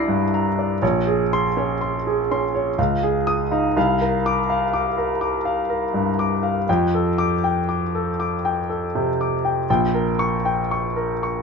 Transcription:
0.00 0.78 C2 medium
0.00 0.84 D4 soft
0.00 0.84 E4 soft
0.00 0.59 D5 soft
0.00 0.34 A#5 medium
0.00 0.78 D6 soft
0.00 0.80 E6 soft
0.00 0.82 A#6 soft
0.00 0.83 C7 soft
0.08 0.47 G2 soft
0.34 0.73 A#5 soft
0.59 0.83 D5 soft
0.82 2.74 A#1 medium
0.82 1.22 C#5 soft
1.07 1.47 G#4 soft
1.33 1.72 C6 medium
1.57 1.96 C#4 soft
1.57 1.96 C#5 soft
1.81 2.20 C6 soft
2.07 2.45 G#4 soft
2.31 2.69 C#4 soft
2.31 2.69 C6 soft
2.55 2.78 C#5 soft
2.78 3.73 C#2 medium
2.78 3.17 F5 soft
3.03 3.42 G#4 soft
3.27 3.66 D#6 medium
3.51 3.76 D#4 soft
3.51 3.76 F5 soft
3.77 6.64 C2 medium
3.77 4.16 F5 soft
4.01 4.40 A#4 soft
4.26 4.64 D6 medium
4.50 4.88 F5 soft
4.73 5.12 D6 soft
4.98 5.36 A#4 soft
5.21 5.60 D6 soft
5.45 5.84 F5 soft
5.70 6.09 A#4 soft
5.94 6.33 G2 soft
6.19 6.58 D6 medium
6.43 6.68 F5 soft
6.69 9.65 F2 medium
6.69 7.08 G5 soft
6.95 7.33 A4 soft
7.18 7.58 D6 medium
7.44 7.83 G5 soft
7.69 8.08 D6 soft
7.95 8.34 A4 soft
8.20 8.59 D6 soft
8.45 8.84 G5 soft
8.70 9.09 A4 soft
8.95 9.34 C3 soft
9.21 9.60 D6 soft
9.45 9.69 G5 soft
9.70 11.42 A#1 medium
9.70 10.09 G5 medium
9.94 10.34 A#4 soft
10.19 10.60 C#6 medium
10.45 10.86 G5 soft
10.71 11.12 C#6 soft
10.96 11.38 A#4 soft
11.23 11.42 C#6 soft

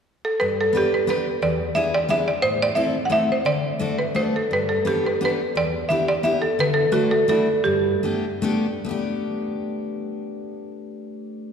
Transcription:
0.25 0.42 A4 medium
0.40 0.67 G2 soft
0.40 0.59 B4 medium
0.61 0.68 A4 medium
0.73 0.91 B3 medium
0.73 0.92 D4 soft
0.73 0.93 G4 medium
0.73 0.93 B4 soft
0.77 0.94 G4 medium
0.94 1.09 B4 medium
1.07 1.26 B3 medium
1.07 1.26 D4 soft
1.07 1.26 G4 soft
1.07 1.26 B4 medium
1.07 1.45 B4 medium
1.42 1.68 E2 soft
1.42 1.78 D5 medium
1.75 1.93 B3 soft
1.75 1.94 D4 medium
1.75 1.94 E4 medium
1.75 1.94 G#4 medium
1.75 1.94 E5 medium
1.94 2.11 D5 medium
2.09 2.27 B3 medium
2.09 2.27 D4 soft
2.09 2.28 E4 medium
2.09 2.27 G#4 medium
2.09 2.28 E5 medium
2.28 2.45 D5 medium
2.42 2.69 A2 soft
2.42 2.61 C5 loud
2.62 2.79 D5 medium
2.75 2.94 A3 medium
2.75 2.94 C4 soft
2.75 2.95 E4 medium
2.75 2.95 A4 medium
2.75 3.08 E5 medium
3.05 3.11 F#5 medium
3.10 3.29 A3 medium
3.10 3.29 C4 soft
3.10 3.28 E4 soft
3.10 3.29 A4 soft
3.10 3.29 E5 medium
3.32 3.46 C5 medium
3.45 3.71 D3 soft
3.45 3.95 D5 medium
3.79 3.98 A3 medium
3.79 3.99 D4 medium
3.79 3.99 F#4 soft
3.79 3.99 A4 medium
3.99 4.17 B4 medium
4.14 4.34 A3 soft
4.14 4.34 D4 soft
4.14 4.34 F#4 soft
4.14 4.35 A4 medium
4.14 4.35 C5 medium
4.36 4.54 A4 medium
4.51 4.78 G2 soft
4.51 4.61 B4 medium
4.69 4.86 A4 medium
4.85 5.04 B3 soft
4.85 5.04 D4 soft
4.85 5.04 G4 soft
4.85 5.06 G4 medium
4.85 5.05 A4 medium
5.07 5.23 B4 medium
5.21 5.39 B3 medium
5.21 5.40 D4 medium
5.21 5.40 G4 soft
5.21 5.40 A4 medium
5.25 5.59 B4 medium
5.55 5.82 E2 soft
5.55 5.92 D5 medium
5.89 6.08 B3 soft
5.89 6.08 D4 soft
5.89 6.08 E4 soft
5.89 6.09 G4 medium
5.89 6.08 E5 medium
6.08 6.24 D5 medium
6.23 6.42 B3 medium
6.23 6.42 D4 soft
6.23 6.42 E4 soft
6.23 6.42 G4 medium
6.23 6.43 E5 medium
6.42 6.59 A4 medium
6.59 6.85 D3 medium
6.59 6.78 B4 medium
6.74 6.93 A4 medium
6.92 7.10 A3 medium
6.92 7.10 D4 soft
6.92 7.11 E4 soft
6.92 7.11 F#4 medium
7.11 7.28 A4 medium
7.28 7.47 A3 medium
7.28 7.47 D4 medium
7.28 7.47 E4 medium
7.28 7.47 F#4 medium
7.28 7.67 A4 medium
7.64 7.94 G2 soft
7.64 8.40 G4 medium
8.03 8.24 A3 medium
8.03 8.24 B3 soft
8.03 8.24 D4 soft
8.03 8.24 G4 medium
8.42 8.65 A3 medium
8.42 8.66 B3 medium
8.42 8.66 D4 medium
8.42 8.66 G4 medium
8.85 11.53 A3 soft
8.85 11.53 B3 soft
8.89 11.53 D4 medium
8.89 11.53 G4 medium

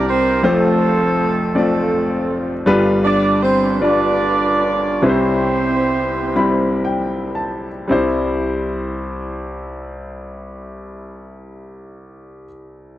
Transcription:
0.00 0.40 C2 medium
0.00 0.40 C3 medium
0.00 0.28 G3 medium
0.00 0.29 C4 medium
0.00 0.29 E4 medium
0.00 0.40 G4 medium
0.00 0.29 A#4 medium
0.00 0.40 A#4 medium
0.07 0.41 C4 medium
0.07 0.41 C5 medium
0.43 2.63 F1 medium
0.43 2.63 F2 medium
0.43 1.40 A3 medium
0.43 1.55 A3 medium
0.43 1.40 C4 medium
0.43 1.52 C4 medium
0.43 1.40 F4 medium
0.43 1.52 F4 medium
0.43 1.55 A4 medium
0.43 1.41 C5 medium
1.55 2.52 A3 medium
1.55 2.36 A3 medium
1.55 2.52 C4 medium
1.55 2.64 C4 soft
1.55 2.52 F4 soft
1.55 2.63 F4 soft
1.55 2.36 A4 medium
1.55 2.52 D5 medium
2.66 4.97 G1 medium
2.66 4.97 G2 medium
2.66 3.65 G3 medium
2.66 3.65 D4 medium
2.66 3.65 F4 medium
2.66 3.66 B4 medium
3.05 3.40 D4 medium
3.05 3.40 D5 medium
3.42 3.78 C4 medium
3.42 3.78 C5 medium
3.80 4.85 G3 medium
3.80 4.85 D4 medium
3.80 5.02 D4 medium
3.80 4.85 F4 medium
3.80 4.98 F4 medium
3.80 4.98 B4 medium
3.80 4.85 D5 medium
3.80 5.02 D5 medium
5.02 7.86 C2 medium
5.02 7.86 C3 medium
5.02 6.16 G3 medium
5.02 6.17 C4 medium
5.02 6.84 C4 medium
5.02 6.80 E4 medium
5.02 6.17 E4 medium
5.02 6.80 G4 medium
5.02 5.09 B4 medium
5.02 6.84 C5 medium
5.09 6.20 C5 medium
6.36 7.68 G3 medium
6.36 7.68 C4 medium
6.36 7.68 E4 medium
6.36 7.68 B5 medium
6.85 7.32 G5 medium
7.35 7.86 A5 medium
7.88 12.46 C2 medium
7.88 12.43 G3 medium
7.88 12.44 C4 medium
7.88 12.46 E4 medium
7.92 12.47 C5 medium

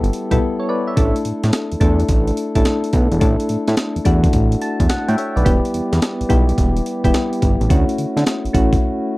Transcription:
0.00 0.11 G1 medium
0.00 0.31 G3 medium
0.00 0.32 B3 medium
0.00 0.32 E4 medium
0.00 0.99 G4 loud
0.00 0.21 A4 medium
0.04 closed hi-hat medium
0.13 closed hi-hat medium
0.31 0.39 B1 medium
0.31 0.91 G3 medium
0.31 0.92 B3 medium
0.31 0.92 E4 medium
0.31 0.41 A4 medium
0.31 kick medium
0.31 closed hi-hat medium
0.60 0.69 A4 medium
0.60 0.69 C#5 medium
0.69 0.87 B4 medium
0.69 0.87 D5 medium
0.87 1.14 C#5 medium
0.87 1.14 E5 medium
0.96 1.12 A1 loud
0.96 1.74 A3 medium
0.96 1.75 D4 medium
0.96 1.75 E4 medium
0.96 1.75 A4 medium
0.96 kick loud
0.96 closed hi-hat medium
1.16 closed hi-hat medium
1.25 1.33 A2 soft
1.25 closed hi-hat medium
1.43 1.51 A2 medium
1.43 snare medium
1.43 closed hi-hat medium
1.53 snare loud
1.53 closed hi-hat medium
1.72 1.76 E2 soft
1.72 closed hi-hat soft
1.80 2.04 E2 loud
1.80 2.45 A3 medium
1.80 2.45 D4 medium
1.80 2.45 E4 medium
1.80 2.45 A4 medium
1.80 kick medium
1.80 closed hi-hat medium
2.00 closed hi-hat medium
2.08 2.32 A1 medium
2.08 kick medium
2.08 closed hi-hat medium
2.27 closed hi-hat soft
2.37 closed hi-hat medium
2.55 2.63 A1 medium
2.55 3.16 A3 medium
2.55 3.16 D4 medium
2.55 3.16 E4 medium
2.55 3.16 A4 loud
2.55 kick medium
2.55 closed hi-hat medium
2.65 snare loud
2.65 closed hi-hat medium
2.84 closed hi-hat medium
2.93 3.08 B1 loud
2.93 kick medium
2.93 closed hi-hat medium
3.12 3.19 E1 loud
3.12 closed hi-hat soft
3.20 3.36 A1 loud
3.20 3.99 A3 medium
3.20 3.99 D4 medium
3.20 3.99 E4 medium
3.20 3.99 A4 medium
3.20 kick loud
3.20 closed hi-hat medium
3.40 closed hi-hat medium
3.49 3.57 A2 soft
3.49 closed hi-hat medium
3.68 3.76 A2 loud
3.68 snare medium
3.68 closed hi-hat soft
3.77 snare loud
3.77 closed hi-hat medium
3.96 4.00 E2 medium
3.96 closed hi-hat soft
4.05 4.28 E2 loud
4.05 4.69 A3 medium
4.05 4.69 D4 medium
4.05 4.70 E4 medium
4.05 4.70 F#4 medium
4.05 kick medium
4.05 closed hi-hat medium
4.24 kick loud
4.24 closed hi-hat medium
4.33 4.56 A1 medium
4.33 kick medium
4.33 closed hi-hat medium
4.52 closed hi-hat medium
4.62 4.88 A5 medium
4.62 closed hi-hat medium
4.80 4.88 E2 medium
4.80 kick medium
4.80 closed hi-hat medium
4.89 5.15 F#5 medium
4.89 snare loud
4.89 closed hi-hat medium
5.08 5.16 A2 loud
5.08 5.16 E5 medium
5.08 5.17 G5 medium
5.08 closed hi-hat medium
5.18 5.36 C#5 medium
5.18 5.44 E5 medium
5.18 closed hi-hat medium
5.36 5.44 B1 loud
5.36 5.63 B4 medium
5.36 5.63 D5 medium
5.36 closed hi-hat soft
5.45 5.61 E1 loud
5.45 6.23 G3 medium
5.45 6.23 B3 medium
5.45 6.23 E4 medium
5.45 6.24 G4 medium
5.45 kick loud
5.45 closed hi-hat medium
5.65 closed hi-hat medium
5.74 5.82 E2 soft
5.74 closed hi-hat medium
5.93 6.00 E2 loud
5.93 snare medium
5.93 closed hi-hat medium
6.02 snare loud
6.02 closed hi-hat medium
6.21 6.24 B1 medium
6.21 closed hi-hat soft
6.29 6.53 B1 loud
6.29 6.93 G3 medium
6.29 6.93 B3 medium
6.29 6.94 E4 medium
6.29 6.94 G4 medium
6.29 kick medium
6.29 closed hi-hat medium
6.49 closed hi-hat medium
6.58 6.81 E1 loud
6.58 kick medium
6.58 closed hi-hat medium
6.77 closed hi-hat medium
6.86 closed hi-hat medium
7.04 7.12 E1 medium
7.04 7.64 G3 medium
7.04 7.65 B3 medium
7.04 7.65 E4 medium
7.04 7.65 G4 medium
7.04 kick medium
7.04 closed hi-hat medium
7.14 snare loud
7.14 closed hi-hat medium
7.33 closed hi-hat medium
7.42 7.57 G1 medium
7.42 kick medium
7.42 closed hi-hat medium
7.61 7.68 A1 medium
7.61 closed hi-hat soft
7.69 7.85 D2 loud
7.69 8.47 A3 medium
7.69 8.48 C#4 medium
7.69 8.48 E4 medium
7.69 8.48 F#4 medium
7.69 kick loud
7.69 closed hi-hat medium
7.89 closed hi-hat medium
7.98 8.06 D3 soft
7.98 closed hi-hat medium
8.17 8.24 D3 medium
8.17 snare medium
8.17 closed hi-hat medium
8.26 snare loud
8.26 closed hi-hat medium
8.45 8.48 A1 medium
8.45 closed hi-hat soft
8.53 8.77 A1 loud
8.53 9.18 A3 medium
8.53 9.18 C#4 medium
8.53 9.18 E4 medium
8.53 9.18 F#4 loud
8.53 kick medium
8.53 closed hi-hat medium
8.73 kick medium
8.73 closed hi-hat soft

